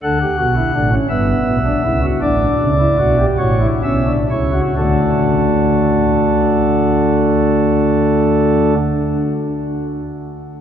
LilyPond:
<<
  \new Staff \with { instrumentName = "Pipe organ" } { \time 6/8 \key d \major \tempo 4. = 41 << { fis''4. e''4. | d''4. cis''8 e''8 cis''8 | <a d' a'>2.~ | <a d' a'>2. | } \\ { a'16 g'16 fis'16 e'16 d'16 cis'16 b8. d'16 e'16 fis'16 | d'8. e'16 fis'16 g'16 fis'16 e'16 cis'16 d'16 e'16 fis'16 | fis'2.~ | fis'2. | } >> }
  \new Staff \with { instrumentName = "Pipe organ" } { \clef bass \time 6/8 \key d \major <d, d>8 <b,, b,>8 <a,, a,>8 <g,, g,>8 <b,, b,>8 <cis, cis>8 | <a,, a,>8 <cis, cis>8 <b,, b,>8 <a,, a,>8 <b,, b,>8 <cis, cis>8 | <d, d>2.~ | <d, d>2. | }
>>